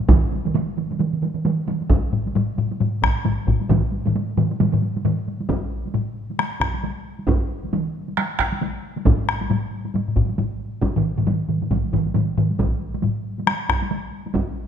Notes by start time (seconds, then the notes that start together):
0.00 taiko high
0.08 taiko, taiko mid, taiko high
0.32 taiko mid, taiko high
0.45 taiko mid, taiko high
0.54 taiko mid, taiko high
0.77 taiko mid, taiko high
0.91 taiko mid, taiko high
0.99 taiko mid, taiko high
1.13 taiko mid
1.22 taiko mid, taiko high
1.35 taiko mid
1.45 taiko mid, taiko high
1.67 taiko mid, taiko high
1.81 taiko high
1.90 taiko, taiko high
2.13 taiko low-mid, taiko high
2.26 taiko high
2.35 taiko low-mid, taiko high
2.58 taiko low-mid, taiko high
2.71 taiko high
2.80 taiko low-mid, taiko high
3.02 taiko rim, taiko, taiko high
3.25 taiko low-mid, taiko high
3.47 taiko, taiko low-mid, taiko high
3.61 taiko high
3.69 taiko, taiko low-mid, taiko mid, taiko high
3.93 taiko high
4.06 taiko low-mid, taiko mid, taiko high
4.15 taiko high
4.37 taiko low-mid, taiko mid, taiko high
4.51 taiko high
4.60 taiko low-mid, taiko mid, taiko high
4.73 taiko low-mid, taiko mid
4.83 taiko high
4.97 taiko high
5.05 taiko low-mid, taiko mid, taiko high
5.28 taiko high
5.40 taiko high
5.49 taiko, taiko high
5.86 taiko high
5.94 taiko low-mid, taiko high
6.30 taiko high
6.39 taiko rim, taiko high
6.60 taiko rim, taiko
6.75 taiko high
6.84 taiko high
7.19 taiko high
7.27 taiko, taiko high
7.64 taiko high
7.73 taiko mid, taiko high
8.09 taiko high
8.17 taiko rim, taiko high
8.39 taiko rim, taiko
8.52 taiko high
8.61 taiko high
8.96 taiko high
9.05 taiko, taiko low-mid, taiko high
9.29 taiko rim
9.41 taiko high
9.50 taiko low-mid, taiko high
9.85 taiko high
9.94 taiko low-mid, taiko high
10.08 taiko low-mid
10.16 taiko, taiko low-mid
10.29 taiko high
10.38 taiko low-mid, taiko high
10.82 taiko, taiko high
10.96 taiko low-mid, taiko mid
11.18 taiko low-mid, taiko mid, taiko high
11.27 taiko low-mid, taiko mid, taiko high
11.49 taiko low-mid, taiko mid
11.62 taiko low-mid, taiko mid, taiko high
11.71 taiko, taiko low-mid, taiko mid, taiko high
11.84 taiko high
11.93 taiko, taiko low-mid, taiko mid
12.06 taiko high
12.15 taiko low-mid, taiko mid, taiko high
12.38 taiko low-mid, taiko mid
12.50 taiko high
12.59 taiko, taiko high
12.94 taiko high
13.03 taiko low-mid, taiko high
13.38 taiko high
13.47 taiko rim, taiko high
13.69 taiko rim, taiko
13.82 taiko high
13.91 taiko high
14.26 taiko high
14.35 taiko, taiko high